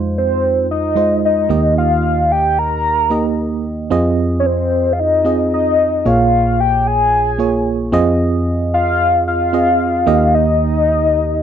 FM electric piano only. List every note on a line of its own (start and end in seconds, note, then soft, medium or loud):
0.00 1.46 F2 medium
0.00 0.36 G#3 loud
0.00 0.36 D#4 medium
0.00 0.36 F4 medium
0.00 0.37 C5 loud
0.96 1.50 G#3 medium
0.96 1.49 D#4 medium
0.96 1.50 F4 medium
0.96 1.50 C5 medium
1.49 3.60 D#2 medium
1.49 3.60 D#3 medium
1.49 2.50 A#3 medium
1.49 2.51 D#4 medium
1.49 2.51 G4 medium
1.49 2.51 D#5 medium
3.10 3.86 A#3 medium
3.10 3.86 D#4 medium
3.10 3.86 G4 medium
3.10 3.87 D#5 medium
3.90 6.01 F2 medium
3.90 4.92 C4 medium
3.90 4.92 F4 medium
3.90 4.92 G#4 medium
3.90 4.92 D#5 loud
5.25 6.00 C4 medium
5.25 6.01 F4 medium
5.25 6.01 G#4 medium
5.25 6.01 D#5 medium
6.05 7.89 A#1 medium
6.05 7.89 A#2 medium
6.05 7.06 A#3 medium
6.05 7.06 F4 medium
6.05 7.06 G#4 medium
6.05 7.07 C#5 medium
7.38 7.92 A#3 medium
7.38 7.92 F4 medium
7.38 7.92 G#4 medium
7.38 7.93 C#5 medium
7.92 10.03 F2 medium
7.92 8.93 C4 loud
7.92 8.94 F4 medium
7.92 8.94 G#4 medium
7.92 8.94 D#5 loud
9.53 10.07 C4 medium
9.53 10.07 F4 medium
9.53 10.07 G#4 medium
9.53 10.06 D#5 medium
10.06 11.43 D#2 medium
10.06 11.43 D#3 medium
10.06 11.08 A#3 loud
10.06 11.08 D#4 medium
10.06 11.08 G4 medium
10.06 11.08 D#5 loud